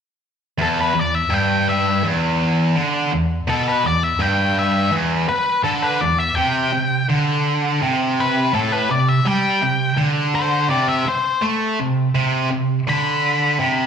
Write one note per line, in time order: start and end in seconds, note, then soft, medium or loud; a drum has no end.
0.58 0.93 E2 loud
0.58 0.78 A4 medium
0.81 0.99 B4 medium
0.94 1.24 E2 medium
0.99 1.15 D5 medium
1.15 1.34 E5 medium
1.30 2.02 G2 loud
1.34 1.68 G5 medium
1.69 2.03 E5 medium
2.04 2.75 E2 medium
2.75 3.11 D3 loud
3.11 3.40 E2 medium
3.48 3.83 B2 loud
3.48 3.66 A4 medium
3.68 3.86 B4 medium
3.83 4.13 E2 medium
3.83 4.03 D5 medium
4.03 4.21 E5 medium
4.19 4.91 G2 loud
4.19 4.56 G5 medium
4.59 4.93 E5 medium
4.92 5.27 E2 medium
5.28 5.63 B4 medium
5.28 muted distorted electric guitar stroke medium
5.64 6.00 D3 loud
5.64 5.82 A4 medium
5.82 6.00 B4 medium
6.01 6.30 E2 medium
6.01 6.19 D5 medium
6.19 6.35 E5 medium
6.35 6.72 C3 loud
6.35 7.06 G5 loud
6.73 7.02 C3 medium
7.10 7.81 D3 medium
7.82 8.53 C3 loud
8.20 8.54 B4 medium
8.53 8.89 A2 medium
8.53 8.72 A4 medium
8.72 8.90 B4 medium
8.90 9.19 C3 medium
8.90 9.08 D5 medium
9.09 9.27 E5 medium
9.25 9.61 G3 loud
9.25 9.97 G5 loud
9.61 9.91 C3 medium
9.97 10.69 D3 loud
10.35 10.70 C5 medium
10.70 11.05 C3 loud
10.70 10.88 D5 medium
10.89 11.06 E5 medium
11.06 11.43 C5 loud
11.06 muted distorted electric guitar stroke medium
11.42 11.78 A3 medium
11.80 12.08 C3 medium
12.15 12.50 C3 loud
12.51 12.80 C3 medium
12.87 13.59 D3 loud
12.87 13.87 B5 loud
13.59 13.87 C3 loud